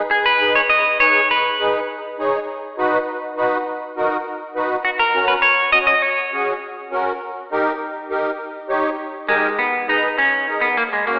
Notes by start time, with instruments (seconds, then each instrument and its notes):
0.11 clean electric guitar G#4
0.26 clean electric guitar B4
0.41 accordion D#4 G#4 B4
0.55 clean electric guitar C#5
0.70 clean electric guitar D#5
1.00 accordion D#4 G#4 B4, clean electric guitar C#5
1.31 clean electric guitar B4
1.59 accordion D#4 G#4 B4
2.19 accordion D#4 G#4 C#5
2.78 accordion D#4 F#4 B4
3.37 accordion D#4 F#4 B4
3.97 accordion D#4 F#4 A#4
4.55 accordion D#4 F#4 B4
4.85 clean electric guitar F#4
4.99 clean electric guitar A#4
5.14 accordion C#4 F#4 A#4
5.28 clean electric guitar B4
5.42 clean electric guitar C#5
5.72 accordion C#4 F#4 C#5, clean electric guitar D#5
5.87 clean electric guitar D#5
6.02 clean electric guitar C#5
6.32 accordion C#4 F#4 G#4
6.91 accordion C#4 F#4 A#4
7.52 accordion D#4 G4 A#4
8.10 accordion D#4 G4 A#4
8.69 accordion D#4 G4 C#5
9.28 clean electric guitar G#3, accordion D#4 G4 A#4
9.59 clean electric guitar B3
9.87 accordion D#4 G#4 B4, clean electric guitar D#4
10.18 clean electric guitar C#4
10.47 accordion D#4 G#4 A#4
10.61 clean electric guitar B3
10.77 clean electric guitar A#3
10.93 clean electric guitar G#3
11.06 clean electric guitar A#3, accordion C#4 F#4 A#4